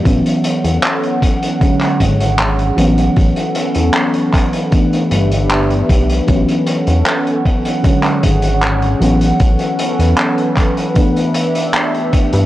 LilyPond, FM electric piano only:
\new Staff \with { instrumentName = "FM electric piano" } { \clef bass \time 4/4 \key a \major \tempo 4 = 77 <e fis b cis'>2 <d fis gis cis'>4. <e fis b cis'>8~ | <e fis b cis'>2 <e a b d'>2 | <e fis b cis'>2 <d fis gis cis'>4. <e fis b cis'>8~ | <e fis b cis'>2 <e a b d'>2 | }